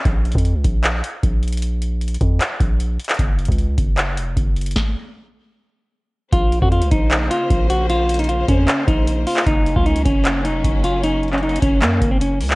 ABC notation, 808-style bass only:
X:1
M:4/4
L:1/16
Q:1/4=153
K:Bbm
V:1 name="808-style bass" clef=bass
B,,,3 F,,2 D,, B,,,4 z2 B,,,4- | B,,,6 F,,2 z2 B,,,4 z2 | G,,,3 D,,3 G,,,4 F,,,2 G,,,4 | z16 |
B,,,3 F,,2 D,, B,,,4 z2 B,,,4- | B,,,6 F,,2 z2 B,,,4 z2 | G,,,3 D,,3 G,,,4 F,,,2 G,,,4- | G,,,6 G,,,2 G,,2 G,,,4 D,,2 |]